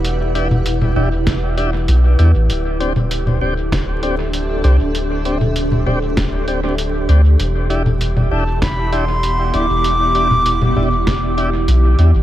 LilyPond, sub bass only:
\new Staff \with { instrumentName = "Sub bass" } { \clef bass \time 4/4 \key e \minor \tempo 4 = 98 e,,4. e,,4. b,,8 e,16 a,,16 | d,,4. d,,2 c,16 d,,16~ | d,,4. d,,2 d,8 | e,,4. e,,2 d,,16 e,,16~ |
e,,4. e,,4. b,,8 e,16 a,,16 | }